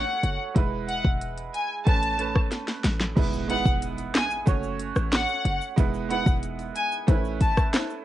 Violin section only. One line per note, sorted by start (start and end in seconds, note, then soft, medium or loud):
0.00 0.37 F#5 medium
0.88 1.03 F#5 medium
1.54 1.68 G#5 medium
1.86 2.32 A5 loud
3.49 3.64 F#5 medium
4.15 4.29 G#5 medium
5.12 5.58 F#5 medium
6.10 6.25 F#5 medium
6.75 6.90 G#5 medium
7.41 7.55 A5 medium